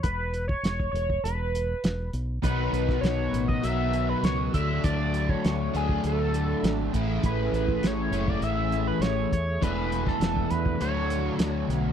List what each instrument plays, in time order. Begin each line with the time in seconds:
0.03 fingered electric bass E1, analog synth lead B4, kick, closed hi-hat
0.34 closed hi-hat
0.48 analog synth lead C#5, kick
0.63 fingered electric bass E1, snare, closed hi-hat
0.80 kick
0.92 fingered electric bass E1, analog synth lead C#5, closed hi-hat
1.10 kick
1.23 fingered electric bass E1, analog synth lead B4, closed hi-hat
1.55 closed hi-hat
1.84 fingered electric bass E1, snare, closed hi-hat
2.13 fingered electric bass B1, closed hi-hat
2.42 fingered electric bass B1, overdriven electric guitar B2 F#3 B3 D#4, tonewheel organ D#3, analog synth lead B4, kick, closed hi-hat
2.47 tonewheel organ F#4 B4
2.73 fingered electric bass B1, analog synth lead B4, closed hi-hat
2.89 kick, snare
3.01 fingered electric bass B1, analog synth lead C#5, snare, closed hi-hat
3.32 fingered electric bass A1, closed hi-hat
3.48 analog synth lead D#5, kick
3.62 fingered electric bass B1, overdriven electric guitar B2 F#3 B3 D#4, analog synth lead E5, closed hi-hat
3.93 closed hi-hat
4.09 analog synth lead B4
4.23 fingered electric bass C#2, analog synth lead C#5, snare, closed hi-hat
4.53 fingered electric bass D2, overdriven electric guitar D3 F#3 A3 D4, tonewheel organ A3 D4, analog synth lead E5, kick, closed hi-hat
4.84 fingered electric bass D2, analog synth lead D5, kick, closed hi-hat
5.14 closed hi-hat
5.29 analog synth lead C#5, kick
5.45 fingered electric bass D2, snare, closed hi-hat
5.74 fingered electric bass D2, overdriven electric guitar D3 F#3 A3 D4, analog synth lead G#4, closed hi-hat
5.89 kick
6.04 fingered electric bass D2, analog synth lead A4, closed hi-hat
6.34 closed hi-hat
6.63 fingered electric bass G#1, snare, closed hi-hat
6.93 fingered electric bass A1, overdriven electric guitar A2 E3 A3 C#4 E4, tonewheel organ E4 G#4, kick, closed hi-hat
7.23 fingered electric bass A1, analog synth lead B4, kick, closed hi-hat
7.52 fingered electric bass A1, analog synth lead B4, closed hi-hat
7.68 kick
7.82 fingered electric bass A1, snare, closed hi-hat
7.87 analog synth lead C#5
8.11 fingered electric bass F#1, overdriven electric guitar A2 E3 A3 C#4 E4, closed hi-hat
8.28 analog synth lead D5, kick
8.42 fingered electric bass A1, analog synth lead E5, closed hi-hat
8.72 closed hi-hat
8.87 analog synth lead B4
8.99 fingered electric bass A1, analog synth lead C#5, snare, closed hi-hat
9.32 fingered electric bass E2, analog synth lead C#5, kick, closed hi-hat
9.61 fingered electric bass E1, overdriven electric guitar E3 B3 D4 G#4, tonewheel organ D4 B4, analog synth lead B4, kick, closed hi-hat
9.92 closed hi-hat
10.07 analog synth lead A4, kick, snare
10.20 fingered electric bass E1, snare, closed hi-hat
10.36 kick
10.50 fingered electric bass E2, analog synth lead B4, closed hi-hat
10.66 kick
10.80 fingered electric bass D2, overdriven electric guitar D3 F#3 A3 D4 F#4, tonewheel organ F#4 C#5, analog synth lead C#5, closed hi-hat
11.10 closed hi-hat
11.39 fingered electric bass D2, snare, closed hi-hat
11.68 fingered electric bass B1, snare, closed hi-hat